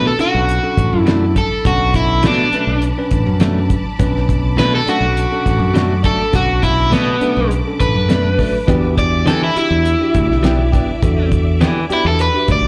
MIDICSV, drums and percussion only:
0, 0, Header, 1, 2, 480
1, 0, Start_track
1, 0, Key_signature, 2, "minor"
1, 0, Tempo, 585938
1, 1350, Time_signature, 4, 2, 24, 8
1, 10384, End_track
2, 0, Start_track
2, 0, Title_t, "Drums"
2, 157, Note_on_c, 9, 42, 60
2, 239, Note_off_c, 9, 42, 0
2, 398, Note_on_c, 9, 42, 81
2, 480, Note_off_c, 9, 42, 0
2, 635, Note_on_c, 9, 36, 87
2, 639, Note_on_c, 9, 42, 62
2, 717, Note_off_c, 9, 36, 0
2, 721, Note_off_c, 9, 42, 0
2, 874, Note_on_c, 9, 42, 78
2, 884, Note_on_c, 9, 38, 106
2, 956, Note_off_c, 9, 42, 0
2, 966, Note_off_c, 9, 38, 0
2, 1114, Note_on_c, 9, 36, 80
2, 1114, Note_on_c, 9, 42, 63
2, 1196, Note_off_c, 9, 36, 0
2, 1196, Note_off_c, 9, 42, 0
2, 1352, Note_on_c, 9, 42, 84
2, 1353, Note_on_c, 9, 36, 118
2, 1434, Note_off_c, 9, 42, 0
2, 1435, Note_off_c, 9, 36, 0
2, 1590, Note_on_c, 9, 42, 64
2, 1591, Note_on_c, 9, 36, 83
2, 1671, Note_off_c, 9, 42, 0
2, 1673, Note_off_c, 9, 36, 0
2, 1824, Note_on_c, 9, 42, 86
2, 1835, Note_on_c, 9, 38, 108
2, 1906, Note_off_c, 9, 42, 0
2, 1917, Note_off_c, 9, 38, 0
2, 2068, Note_on_c, 9, 42, 59
2, 2150, Note_off_c, 9, 42, 0
2, 2308, Note_on_c, 9, 42, 81
2, 2390, Note_off_c, 9, 42, 0
2, 2545, Note_on_c, 9, 42, 67
2, 2551, Note_on_c, 9, 36, 89
2, 2627, Note_off_c, 9, 42, 0
2, 2633, Note_off_c, 9, 36, 0
2, 2784, Note_on_c, 9, 42, 86
2, 2794, Note_on_c, 9, 38, 106
2, 2866, Note_off_c, 9, 42, 0
2, 2876, Note_off_c, 9, 38, 0
2, 3029, Note_on_c, 9, 42, 67
2, 3031, Note_on_c, 9, 36, 89
2, 3111, Note_off_c, 9, 42, 0
2, 3113, Note_off_c, 9, 36, 0
2, 3271, Note_on_c, 9, 42, 91
2, 3274, Note_on_c, 9, 36, 116
2, 3353, Note_off_c, 9, 42, 0
2, 3356, Note_off_c, 9, 36, 0
2, 3410, Note_on_c, 9, 38, 34
2, 3492, Note_off_c, 9, 38, 0
2, 3514, Note_on_c, 9, 36, 81
2, 3516, Note_on_c, 9, 42, 60
2, 3596, Note_off_c, 9, 36, 0
2, 3597, Note_off_c, 9, 42, 0
2, 3754, Note_on_c, 9, 42, 82
2, 3765, Note_on_c, 9, 38, 110
2, 3836, Note_off_c, 9, 42, 0
2, 3847, Note_off_c, 9, 38, 0
2, 3994, Note_on_c, 9, 42, 61
2, 4076, Note_off_c, 9, 42, 0
2, 4235, Note_on_c, 9, 42, 83
2, 4317, Note_off_c, 9, 42, 0
2, 4473, Note_on_c, 9, 36, 87
2, 4475, Note_on_c, 9, 42, 59
2, 4486, Note_on_c, 9, 38, 35
2, 4555, Note_off_c, 9, 36, 0
2, 4557, Note_off_c, 9, 42, 0
2, 4568, Note_off_c, 9, 38, 0
2, 4712, Note_on_c, 9, 42, 78
2, 4723, Note_on_c, 9, 38, 111
2, 4794, Note_off_c, 9, 42, 0
2, 4805, Note_off_c, 9, 38, 0
2, 4946, Note_on_c, 9, 42, 63
2, 4951, Note_on_c, 9, 36, 90
2, 5028, Note_off_c, 9, 42, 0
2, 5033, Note_off_c, 9, 36, 0
2, 5187, Note_on_c, 9, 42, 81
2, 5191, Note_on_c, 9, 36, 110
2, 5268, Note_off_c, 9, 42, 0
2, 5273, Note_off_c, 9, 36, 0
2, 5430, Note_on_c, 9, 42, 60
2, 5431, Note_on_c, 9, 36, 81
2, 5512, Note_off_c, 9, 42, 0
2, 5513, Note_off_c, 9, 36, 0
2, 5669, Note_on_c, 9, 42, 81
2, 5679, Note_on_c, 9, 38, 114
2, 5751, Note_off_c, 9, 42, 0
2, 5761, Note_off_c, 9, 38, 0
2, 5908, Note_on_c, 9, 42, 64
2, 5990, Note_off_c, 9, 42, 0
2, 6151, Note_on_c, 9, 42, 87
2, 6233, Note_off_c, 9, 42, 0
2, 6392, Note_on_c, 9, 36, 92
2, 6392, Note_on_c, 9, 42, 68
2, 6474, Note_off_c, 9, 36, 0
2, 6474, Note_off_c, 9, 42, 0
2, 6631, Note_on_c, 9, 42, 87
2, 6642, Note_on_c, 9, 38, 109
2, 6713, Note_off_c, 9, 42, 0
2, 6724, Note_off_c, 9, 38, 0
2, 6871, Note_on_c, 9, 46, 75
2, 6872, Note_on_c, 9, 36, 89
2, 6953, Note_off_c, 9, 46, 0
2, 6954, Note_off_c, 9, 36, 0
2, 7111, Note_on_c, 9, 42, 87
2, 7113, Note_on_c, 9, 36, 119
2, 7193, Note_off_c, 9, 42, 0
2, 7194, Note_off_c, 9, 36, 0
2, 7352, Note_on_c, 9, 36, 83
2, 7353, Note_on_c, 9, 42, 62
2, 7434, Note_off_c, 9, 36, 0
2, 7435, Note_off_c, 9, 42, 0
2, 7593, Note_on_c, 9, 42, 83
2, 7603, Note_on_c, 9, 38, 109
2, 7675, Note_off_c, 9, 42, 0
2, 7685, Note_off_c, 9, 38, 0
2, 7834, Note_on_c, 9, 42, 61
2, 7916, Note_off_c, 9, 42, 0
2, 8070, Note_on_c, 9, 42, 84
2, 8152, Note_off_c, 9, 42, 0
2, 8310, Note_on_c, 9, 42, 65
2, 8313, Note_on_c, 9, 36, 90
2, 8392, Note_off_c, 9, 42, 0
2, 8395, Note_off_c, 9, 36, 0
2, 8450, Note_on_c, 9, 38, 36
2, 8532, Note_off_c, 9, 38, 0
2, 8549, Note_on_c, 9, 42, 77
2, 8560, Note_on_c, 9, 38, 117
2, 8631, Note_off_c, 9, 42, 0
2, 8642, Note_off_c, 9, 38, 0
2, 8793, Note_on_c, 9, 36, 87
2, 8794, Note_on_c, 9, 42, 64
2, 8875, Note_off_c, 9, 36, 0
2, 8876, Note_off_c, 9, 42, 0
2, 9032, Note_on_c, 9, 36, 117
2, 9032, Note_on_c, 9, 42, 77
2, 9114, Note_off_c, 9, 36, 0
2, 9114, Note_off_c, 9, 42, 0
2, 9269, Note_on_c, 9, 42, 60
2, 9271, Note_on_c, 9, 36, 87
2, 9351, Note_off_c, 9, 42, 0
2, 9353, Note_off_c, 9, 36, 0
2, 9512, Note_on_c, 9, 42, 83
2, 9522, Note_on_c, 9, 38, 122
2, 9594, Note_off_c, 9, 42, 0
2, 9604, Note_off_c, 9, 38, 0
2, 9750, Note_on_c, 9, 42, 63
2, 9832, Note_off_c, 9, 42, 0
2, 9986, Note_on_c, 9, 42, 84
2, 10068, Note_off_c, 9, 42, 0
2, 10224, Note_on_c, 9, 42, 65
2, 10227, Note_on_c, 9, 36, 94
2, 10306, Note_off_c, 9, 42, 0
2, 10309, Note_off_c, 9, 36, 0
2, 10384, End_track
0, 0, End_of_file